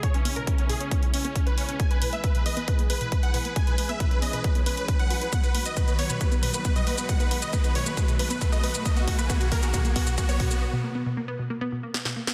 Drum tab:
HH |xxoxxxoxxxoxxxox|xxoxxxoxxxoxxxox|xxoxxxoxxxoxxxox|xxoxxxoxxxoxxxox|
SH |----------------|----------------|----------------|xx-xxx-xxx-xxx-x|
SD |----------------|----------------|----------------|----------------|
BD |o---o---o---o---|o---o---o---o---|o---o---o---o---|o---o---o---o---|

HH |xxoxxxoxxxoxxxox|xxoxxxoxxxoxxxox|----------------|
SH |xx-xxx-xxx-xxx-x|xx-xxx-xxx-xxx-x|----------------|
SD |----------------|----------------|------------oo-o|
BD |o---o---o---o---|o-o-o-o-o-o-o-o-|----------------|